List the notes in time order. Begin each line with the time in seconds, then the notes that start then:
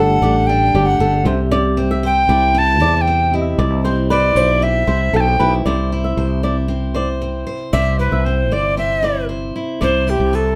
Already playing: G1 G3 A3 D4 G4 A4 D5 F#5
0.22 A1 G4 D5
0.47 D4 G5
0.74 G1 G4 D5
0.86 F#5
0.99 G1 D4 A4
1.23 C2 C3 C4 G4 C5
1.28 E5
1.51 C3 D5
1.77 C4
1.91 E5
2.03 C5 G5
2.29 C2 E4 D5
2.54 C4 A5
2.80 E2 E4 D5
2.97 A5
3.01 G5
3.07 C4
3.31 C4 E4 G4 D#5
3.41 E5
3.58 C2 D5
3.85 C4 C5
4.10 B4 C5 D5
4.35 B1 E4 C5
4.62 C4 E5
4.87 C2 E4 C5
5.13 B1 C4 A4 A5
5.20 G5
5.40 B1 E4 B4
5.66 C2 C3 C5 D5
5.92 E4
6.04 E5
6.17 C2 C5
6.43 E4 D5
6.68 C4
6.94 C5 D5
7.21 C4
7.47 C5
7.73 C2 C3 C5 D5 E5
7.99 E4 B4
8.12 C2 E5
8.25 C4 C5
8.51 G1 C5 D5
8.77 C4 E5
9.03 E4 D5
9.29 C5
9.56 E4
9.81 C2 C3 C5 D5
10.07 E4 G4 C5
10.20 C2
10.33 C4 A4 B4